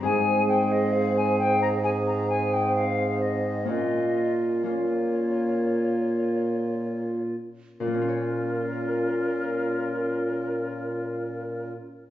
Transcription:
<<
  \new Staff \with { instrumentName = "Flute" } { \time 4/4 \key bes \minor \tempo 4 = 59 aes''8 g''16 ees''16 f''16 aes''16 g''16 bes''16 aes''16 bes''16 aes''16 g''16 f''8 ees''8 | ees''8. r16 des''2~ des''8 r8 | bes'1 | }
  \new Staff \with { instrumentName = "Recorder" } { \time 4/4 \key bes \minor aes'2 aes'2 | f'4 f'2~ f'8 r8 | f'1 | }
  \new Staff \with { instrumentName = "Harp" } { \time 4/4 \key bes \minor <c' ees' aes'>1 | <bes des' f'>4 <bes des' f'>2.~ | <bes des' f'>1 | }
  \new Staff \with { instrumentName = "Harp" } { \time 4/4 \key bes \minor aes,1 | bes,1 | <bes, bes des' f' des''>1 | }
  \new Staff \with { instrumentName = "Trombone" } { \time 4/4 \key bes \minor c'2 c'2 | bes4 bes2~ bes8 r8 | des'1 | }
  \new Staff \with { instrumentName = "Bassoon" } { \clef bass \time 4/4 \key bes \minor aes,1 | bes,2.~ bes,8 r8 | bes,1 | }
>>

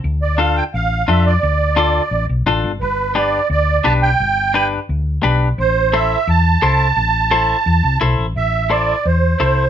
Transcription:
<<
  \new Staff \with { instrumentName = "Accordion" } { \time 4/4 \key a \minor \tempo 4 = 173 r8 d''8 f''8 g''8 f''4 e''8 d''8~ | d''2~ d''8 r4. | b'4 d''4 d''4 a''8 g''8~ | g''4. r2 r8 |
c''4 e''4 a''2~ | a''2. r4 | e''4 d''4 c''4 c''4 | }
  \new Staff \with { instrumentName = "Clean electric guitar" } { \time 4/4 \key a \minor r4 <d' f' a'>8 r4. <d' f' a'>8 r8 | r4 <d' f' a'>8 r4. <d' f' a'>8 r8 | r4 <d' g' b'>8 r4. <d' g' b'>8 r8 | r4 <d' g' b'>8 r4. <d' g' b'>8 r8 |
r4 <e' a' c''>8 r4. <e' a' c''>8 r8 | r4 <e' a' c''>8 r4. <e' a' c''>8 r8 | r4 <e' a' c''>8 r4. <e' a' c''>8 r8 | }
  \new Staff \with { instrumentName = "Fingered electric bass" } { \clef bass \time 4/4 \key a \minor d,2 a,,4 f,4 | d,2 a,,8 b,,8 a,,8 g,,8 | g,,2 d,4 b,,4 | g,,2 d,4 b,,4 |
a,,2 e,4 c,4 | a,,2 e,8 c,8 b,,8 a,,8 | a,,2 e,4 c,4 | }
>>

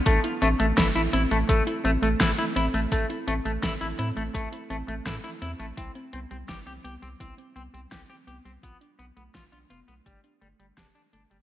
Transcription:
<<
  \new Staff \with { instrumentName = "Clean electric guitar" } { \time 4/4 \key a \minor \tempo 4 = 84 a16 r16 a16 a16 e'16 e'16 e'16 a16 a16 r16 a16 a16 e'16 e'16 e'16 a16 | a16 r16 a16 a16 e'16 e'16 e'16 a16 a16 r16 a16 a16 e'16 e'16 e'16 a16 | c'16 r16 c'16 c'16 g'16 g'16 g'16 c'16 c'16 r16 c'16 c'16 g'16 g'16 g'16 c'16 | b16 r16 b16 b16 f'16 f'16 f'16 b16 g16 r16 g16 g16 d'16 d'16 d'16 g16 | }
  \new Staff \with { instrumentName = "Synth arpeggio sound" } { \time 4/4 \key a \minor a'16 e'16 c'16 a16 a'16 e'16 c'16 a16 a'16 e'16 c'16 a16 a'16 e'16 c'16 a16 | a'16 e'16 c'16 a16 a'16 e'16 c'16 a16 a'16 e'16 c'16 a16 a'16 e'16 c'16 a16 | e'16 c'16 b16 g16 e'16 c'16 b16 g16 e'16 c'16 b16 g16 e'16 c'16 b16 g16 | f'16 d'16 b16 a16 f'16 d'16 b16 a16 g'16 d'16 a16 g16 g'16 d'16 a16 g16 | }
  \new Staff \with { instrumentName = "Analog synth bass" } { \clef bass \time 4/4 \key a \minor a,,16 r16 a,,16 a,,16 g,,16 a,,16 a,,16 a,,16 a,,16 r16 a,,16 a,,16 a,,16 r16 a,,16 a,,16 | a,,16 r16 a,,16 a,,16 a,,16 a,,16 a,16 a,,16 a,,16 r16 a,,16 a,,16 a,16 r16 e,16 a,,16 | c,16 r16 c,16 c,16 g,,16 c,16 c,16 c,16 c,16 r16 c,16 c,16 c,16 r16 c,16 c,16 | b,,16 r16 b,,16 b,,16 b,,16 b,,16 f,,16 b,,16 g,,16 r16 g,,16 g,,16 f,,16 r16 g,,16 g,,16 | }
  \new DrumStaff \with { instrumentName = "Drums" } \drummode { \time 4/4 <hh bd>16 hh16 hh16 hh16 <hh bd sn>16 hh16 hh16 hh16 <hh bd>16 hh16 hh16 hh16 <hh bd sn>16 hh16 hh16 hh16 | <hh bd>16 hh16 hh16 hh16 <hh bd sn>16 hh16 hh16 hh16 <hh bd>16 hh16 hh16 hh16 <hh bd sn>16 hh16 hh16 hh16 | <hh bd>16 hh16 hh16 hh16 <hh bd sn>16 hh16 hh16 hh16 <hh bd>16 hh16 hh16 hh16 <hh bd sn>16 hh16 hh16 hh16 | <hh bd>16 hh16 hh16 hh16 <hh bd sn>16 hh16 hh16 hh16 <hh bd>16 hh16 hh16 hh16 <hh bd sn>16 hh16 hh16 hh16 | }
>>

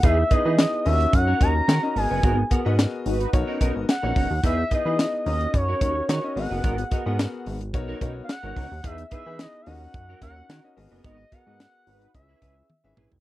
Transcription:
<<
  \new Staff \with { instrumentName = "Analog synth lead" } { \time 4/4 \key gis \minor \tempo 4 = 109 e''8 dis''4 e''8 fis''8 ais''4 gis''8~ | gis''8 r2 r8 fis''4 | e''8 dis''4 dis''8 cis''4. fis''8~ | fis''4. r4 r16. eis''32 fis''4 |
e''8 e''8 dis''16. eis''32 fis''4 fis''4 r8 | dis''8 fis''4. e''4. r8 | }
  \new Staff \with { instrumentName = "Analog polysynth" } { \time 4/4 \key gis \minor r1 | <dis' fis' ais'>16 r4 r16 <dis' fis' b'>8 r2 | r1 | r1 |
r1 | <dis' fis' b'>16 r4 r16 <dis' fis' b'>8 r2 | }
  \new Staff \with { instrumentName = "Clean electric guitar" } { \time 4/4 \key gis \minor <dis' gis' b'>16 r16 <dis' gis' b'>16 <dis' gis' b'>16 r4 r16 <cis' fis' ais'>16 <cis' fis' ais'>16 r16 <cis' fis' ais'>16 r8 <b fis' b'>16 | <b fis' ais'>16 r16 <b fis' ais'>16 <b fis' b'>16 r4 r16 <cis' dis' ais'>16 <cis' dis' ais'>16 r8 <cis' dis' ais'>16 <cis' dis' ais'>16 r16 | <dis' gis' b'>16 r16 <dis' gis' b'>16 <dis' gis' b'>16 r4 r16 <cis' fis' ais'>16 <cis' fis' ais'>16 r16 <cis' fis' ais'>16 r8 <b fis' b'>16 | <b fis' ais'>16 r16 <b fis' ais'>16 <b fis' b'>16 r4 r16 <cis' dis' ais'>16 <cis' dis' ais'>16 r8 <cis' dis' ais'>16 <cis' dis' ais'>16 r16 |
<dis' gis' b'>16 r16 <dis' gis' b'>16 <dis' gis' b'>16 r4 r16 <cis' fis' ais'>16 <cis' fis' ais'>16 r16 <cis' fis' ais'>16 r8 <b fis' b'>16 | <b fis' ais'>16 r16 <b fis' ais'>16 <b fis' b'>16 r4 r16 <e' gis' b'>16 <e' gis' b'>16 r8. <e' gis' b'>16 r16 | }
  \new Staff \with { instrumentName = "Grand piano" } { \time 4/4 \key gis \minor <b dis' e' gis' dis''>16 r16 <b dis' e' gis' dis''>16 <b dis' e' gis' dis''>8. <cis' dis' eis' fis' ais' dis''>8. r16 <cis' dis' fis' ais' dis''>8 r16 <cis' dis' fis' ais' dis''>16 <b fis' gis' ais' dis''>8~ | <b fis' gis' ais' dis''>16 r16 <b fis' gis' ais' fis''>16 <b fis' gis' ais' dis''>4 r16 <b dis' fis' ais' cis''>8 <b dis' fis' ais' dis''>8 r16 <b dis' fis' ais' cis''>8 r16 | <b dis' e' gis' dis''>16 r16 <b dis' e' gis' dis''>16 <b dis' e' g' gis' dis''>8. <cis' dis' fis' ais' dis''>8. r16 <cis' dis' fis' ais' cis''>8 r16 <cis' dis' fis' ais' dis''>16 <b fis' gis' ais' dis''>8~ | <b fis' gis' ais' dis''>16 r16 <b fis' gis' ais' dis''>16 <b fis' gis' ais' fis''>4 r16 <b dis' fis' ais' cis''>8 <b dis' fis' ais' cis''>8 r16 <b dis' fis' ais' cis''>8 r16 |
<b dis' e' gis' dis''>16 r16 <b dis' e' gis' b'>16 <b dis' e' gis' b'>8. <cis' dis' fis' ais' dis''>8. r16 <cis' dis' fis' ais' fis''>8 r16 <cis' dis' fis' ais' dis''>16 <b fis' gis' ais' dis''>8~ | <b fis' gis' ais' dis''>16 r16 <b fis' gis' ais' dis''>16 <b fis' gis' ais' dis''>4 r16 <cis' e' gis' b' e''>8 <cis' e' gis' b' e''>8 r16 <cis' e' gis' b' e''>8 r16 | }
  \new Staff \with { instrumentName = "Analog synth bass" } { \clef bass \time 4/4 \key gis \minor e,8 r16 e8 r16 dis,8 fis,8 dis,8 dis16 r16 gis,,16 fis,,16 | gis,,8 r16 gis,8 r16 gis,,8 b,,16 r16 b,,16 gis,,16 r16 ais,,16 fis,,16 dis,16 | e,8 r16 e8 r16 dis,8 fis,8 dis,8 dis16 r16 gis,,16 fis,,16 | gis,,8 r16 gis,8 r16 gis,,8 b,,8 b,,8 r16 gis,,16 cis,16 dis,16 |
e,8 r16 e8 r16 dis,8 fis,8 dis,8 dis16 r16 gis,,16 fis,,16 | gis,,8 r16 gis,8 r16 gis,,8 cis,8 cis,8 r16 gis,,16 ais,,16 b,,16 | }
  \new DrumStaff \with { instrumentName = "Drums" } \drummode { \time 4/4 <hh bd>8 <hh bd>8 <hh sn>8 hho16 hh16 <hh bd>8 <hh bd>8 <hh sn>8 hho8 | <hh bd>8 <hh bd>8 <hh sn>8 hho16 hh16 <hh bd>8 <hh bd>8 <hh sn>8 <hho bd>8 | <hh bd>8 <hh bd>8 <hh sn>8 hho16 hh16 <hh bd>8 <hh bd>8 <hh sn>8 hho8 | <hh bd>16 hh16 <hh bd>8 <hh sn>8 hho16 hh16 <hh bd>8 <hh bd>8 <hh sn>8 <hho bd>8 |
<hh bd>16 hh16 <hh bd>8 <hh sn>8 hho8 <hh bd>8 <hh bd>8 <hh sn>8 hho8 | <hh bd>8 <hh bd>8 <hh sn>8 hho16 hh16 <hh bd>8 <hh bd>8 tommh8 toml16 tomfh16 | }
>>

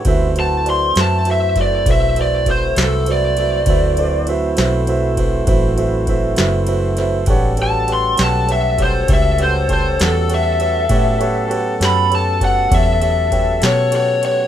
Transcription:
<<
  \new Staff \with { instrumentName = "Lead electric guitar" } { \time 12/8 \key d \major \tempo 4. = 66 r8 a''8 c'''8 a''8 e''8 d''8 e''8 d''8 c''8 a'8 d''4~ | d''4 r1 r4 | r8 a''8 c'''8 a''8 e''8 c''8 e''8 c''8 c''8 a'8 e''4~ | e''4 r8 b''8 a''8 fis''8 e''4. cis''8 cis''8 cis''8 | }
  \new Staff \with { instrumentName = "Grand piano" } { \time 12/8 \key d \major <fis' b' c'' e''>8 <fis' b' c'' fis''>8 <fis' b' c'' d''>8 <fis' b' c'' e''>8 <fis' b' c'' e''>8 <fis' b' c'' e''>8 <fis' b' c'' e''>8 <fis' b' c'' e''>8 <fis' b' c'' e''>8 <fis' b' c'' e''>8 <fis' b' c'' e''>8 <fis' b' c'' e''>8 | <fis' b' c'' e''>8 <fis' b' c'' d''>8 <fis' b' c'' e''>8 <fis' b' c'' e''>8 <fis' b' c'' e''>8 <fis' b' c'' e''>8 <fis' b' c'' e''>8 <fis' b' c'' e''>8 <fis' b' c'' e''>8 <fis' b' c'' e''>8 <fis' b' c'' e''>8 <fis' b' c'' e''>8 | <g' b' cis'' fis''>8 <g' b' cis'' fis''>8 <g' b' cis'' fis''>8 <g' b' cis'' fis''>8 <g' b' cis'' fis''>8 <g' b' cis'' fis''>8 <g' b' cis'' e''>8 <g' b' cis'' fis''>8 <g' b' cis'' a''>8 <g' b' cis'' fis''>8 <g' b' cis'' fis''>8 <g' b' cis'' fis''>8 | <g' b' cis'' fis''>8 <g' b' cis'' fis''>8 <g' b' cis'' fis''>8 <g' b' cis'' fis''>8 <g' b' cis'' a''>8 <g' b' cis'' fis''>8 <g' b' cis'' fis''>8 <g' b' cis'' e''>8 <g' b' cis'' g''>8 <g' b' cis'' fis''>8 <g' b' cis'' fis''>8 <g' b' cis'' fis''>8 | }
  \new Staff \with { instrumentName = "Horn section" } { \time 12/8 \key d \major <e' fis' a' c''>1.~ | <e' fis' a' c''>1. | <fis' a'>1.~ | <fis' a'>1. | }
  \new Staff \with { instrumentName = "Tonewheel organ" } { \time 12/8 \key d \major <g c' cis' e'>8 <fis a c' e'>1~ <fis a c' e'>4. | <fis a c' e'>1. | <g gis c' d'>8 <g a cis' fis'>1~ <g a cis' fis'>4. | <fis a b cis'>1. | }
  \new Staff \with { instrumentName = "Fingered electric bass" } { \clef bass \time 12/8 \key d \major d,4. fis,4. b,,4. c,4. | d,4. b,,4. a,,4. fis,,4. | a,,4. b,,4. cis,4. e,4. | a,4. fis,4. e,4. b,4. | }
  \new DrumStaff \with { instrumentName = "Drums" } \drummode { \time 12/8 <bd cymr>8 cymr8 cymr8 <cymr sn>8 cymr8 <bd cymr sn>8 <bd cymr>8 cymr8 <bd cymr>8 <cymr sn>8 cymr8 cymr8 | <bd cymr>8 cymr8 cymr8 <cymr sn>8 cymr8 <bd cymr>8 <bd cymr>8 cymr8 <bd cymr>8 <cymr sn>8 cymr8 <cymr sn>8 | <bd cymr>8 cymr8 cymr8 <cymr sn>8 cymr8 <bd cymr>8 <bd cymr>8 cymr8 <bd cymr>8 <cymr sn>8 cymr8 cymr8 | <bd cymr>8 cymr8 cymr8 <cymr sn>8 cymr8 <bd cymr>8 <bd cymr>8 cymr8 <bd cymr>8 <cymr sn>8 cymr8 cymr8 | }
>>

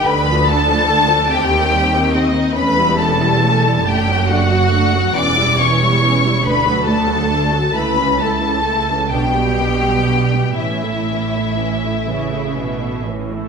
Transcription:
<<
  \new Staff \with { instrumentName = "Violin section" } { \time 6/8 \key c \dorian \tempo 4. = 46 b''8 a''4 g''4 ees''8 | \key a \mixolydian b''8 a''4 g''8 fis''4 | d'''8 cis'''4 b''8 a''4 | b''8 a''4 g''4. |
e''2~ e''8 r8 | }
  \new Staff \with { instrumentName = "Violin section" } { \time 6/8 \key c \dorian b'8 a'4 g'4 ees'8 | \key a \mixolydian b'8 a'4 g'8 fis'4 | d''8 cis''4 b'8 a'4 | b'8 a'4 g'4. |
e'2~ e'8 r8 | }
  \new Staff \with { instrumentName = "Viola section" } { \time 6/8 \key c \dorian << { d'4. c'4. | \key a \mixolydian cis'16 e'16 cis'16 e'16 cis'16 e'16 d'16 fis'16 d'16 fis'16 d'16 fis'16 | cis'16 e'16 cis'16 e'16 cis'16 e'16 d'16 fis'16 d'16 fis'16 d'16 fis'16 | e'16 cis'16 e'16 cis'16 e'16 cis'16 d'16 b16 d'16 b16 d'16 b16 |
cis'16 e'16 cis'16 e'16 cis'16 e'16 cis'16 e'16 cis'16 e'16 cis'16 e'16 | } \\ { d16 f16 d16 f16 d16 f16 c16 ees16 g16 ees16 c16 ees16 | a16 g16 a16 g16 a16 g16 a16 fis16 a16 fis16 a16 fis16 | e16 g16 e16 g16 e16 g16 a16 fis16 a16 fis16 a16 fis16 | a16 e16 a16 e16 a16 e16 b16 g16 b16 g16 b16 g16 |
e16 a16 e16 a16 e16 a16 e16 a16 e16 a16 e16 a16 | } >> }
  \new Staff \with { instrumentName = "Cello section" } { \clef bass \time 6/8 \key c \dorian d,4. ees,4. | \key a \mixolydian e,4. fis,4. | e,4. d,4. | cis,4. b,4. |
a,4. cis8 b,8 a,8 | }
  \new Staff \with { instrumentName = "Double bass section" } { \clef bass \time 6/8 \key c \dorian d,4. ees,4. | \key a \mixolydian e,,4. fis,,4. | e,,4. d,4. | cis,4. b,,4. |
a,,2. | }
>>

